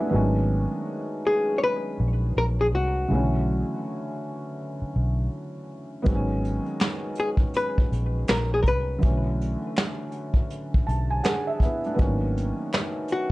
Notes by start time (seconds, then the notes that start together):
Already playing: B3 E4 G#4 E5 F#5 G#5 A5
0.00 A3 D4
0.09 D#3 F#3 B3
0.14 G#1 G#3 C#4
1.27 G#4
1.58 C#5
1.64 B4
2.00 A#1
2.37 A#1 A#4
2.61 G#4
2.73 C2 F#4
3.08 B1 C#3 E3 F#3
3.13 D3 A3 C#4
4.82 muted fingered electric bass stroke
4.96 B1
6.02 D#3 F#3 B3, closed hi-hat
6.07 G#1 G#3 C4, kick
6.15 C#4
6.45 closed hi-hat
6.66 closed hi-hat
6.80 finger snap, snare, closed hi-hat
7.15 closed hi-hat
7.20 G#4
7.37 kick, closed hi-hat
7.54 B4, closed hi-hat
7.78 kick
7.92 A#1, closed hi-hat
8.28 A#1 A#4, finger snap, snare, closed hi-hat
8.54 G#4
8.63 C2 A#4, kick, closed hi-hat
8.68 B4
8.98 D3 E3 F#3, closed hi-hat
9.03 B1 A3 C#4, kick
9.41 closed hi-hat
9.76 finger snap, snare, closed hi-hat
10.12 closed hi-hat
10.34 kick
10.50 closed hi-hat
10.74 muted fingered electric bass stroke, kick
10.87 B1 A5, closed hi-hat
11.11 G#5
11.24 D4 G#4 F#5, finger snap, snare, closed hi-hat
11.47 E5
11.60 B3 E4, kick, closed hi-hat
11.84 A3 D4, closed hi-hat
11.94 D#3 F#3 B3
11.98 G#1 A#3 C#4, kick, closed hi-hat
12.37 closed hi-hat
12.73 finger snap, snare, closed hi-hat
13.08 closed hi-hat
13.12 F#4